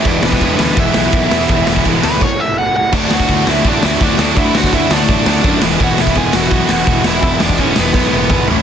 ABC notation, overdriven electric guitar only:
X:1
M:4/4
L:1/8
Q:1/4=167
K:Emix
V:1 name="Overdriven electric guitar"
[Bd] [DB] [DB] [DB] e4- | e2 z B c e f f | [Dd] [Ff]2 [Ee] [Dd] [Ee] [Dd] [Dd] | [Ee] [Ff] [Ee] [Dd]4 z |
[Ff] [Ee] [Gg] [Ff]2 [Ff]2 [Ee]- | [Ee] [Dd] [Cc] [B,B]4 z |]